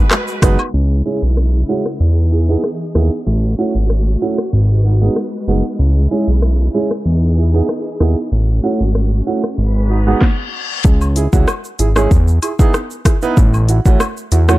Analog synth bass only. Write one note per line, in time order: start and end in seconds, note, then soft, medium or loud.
0.42 0.57 F#1 medium
0.74 1.02 C#2 loud
1.22 1.64 B1 medium
2.00 2.57 E2 loud
2.95 3.10 D#2 medium
3.27 3.55 A1 loud
3.75 4.16 G#1 medium
4.53 5.09 G#1 loud
5.48 5.63 F#1 medium
5.79 6.08 C#2 loud
6.28 6.69 B1 medium
7.06 7.62 E2 loud
8.00 8.15 D#2 medium
8.32 8.60 A1 loud
8.80 9.22 G#1 medium
9.58 10.15 G#1 loud
10.85 11.28 C#2 loud
11.33 11.46 C#2 medium
11.79 12.08 G#1 medium
12.11 12.39 E2 loud
13.37 13.80 A1 loud
13.86 13.99 A1 medium
14.32 14.59 E2 medium